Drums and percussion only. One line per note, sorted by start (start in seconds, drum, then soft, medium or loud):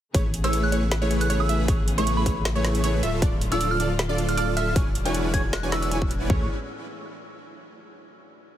0.14 kick loud
0.14 closed hi-hat medium
0.34 closed hi-hat medium
0.44 closed hi-hat medium
0.53 closed hi-hat medium
0.72 closed hi-hat medium
0.92 snare loud
0.92 closed hi-hat medium
1.11 closed hi-hat medium
1.21 closed hi-hat medium
1.30 closed hi-hat medium
1.49 closed hi-hat medium
1.68 kick loud
1.68 closed hi-hat medium
1.88 closed hi-hat medium
1.98 closed hi-hat medium
2.07 closed hi-hat medium
2.26 kick medium
2.26 closed hi-hat medium
2.45 snare loud
2.45 closed hi-hat medium
2.65 snare medium
2.65 closed hi-hat medium
2.75 closed hi-hat medium
2.84 closed hi-hat medium
3.03 closed hi-hat medium
3.22 kick loud
3.22 closed hi-hat medium
3.41 closed hi-hat medium
3.52 closed hi-hat medium
3.61 closed hi-hat medium
3.80 closed hi-hat medium
3.99 snare loud
3.99 closed hi-hat medium
4.18 closed hi-hat medium
4.29 closed hi-hat medium
4.38 closed hi-hat medium
4.57 closed hi-hat medium
4.76 kick loud
4.76 closed hi-hat medium
4.95 closed hi-hat medium
5.06 closed hi-hat medium
5.14 closed hi-hat medium
5.34 kick medium
5.34 closed hi-hat medium
5.53 snare loud
5.53 closed hi-hat medium
5.72 snare medium
5.72 closed hi-hat medium
5.82 closed hi-hat medium
5.91 closed hi-hat medium
6.02 kick medium
6.11 closed hi-hat medium
6.30 kick loud
6.30 floor tom loud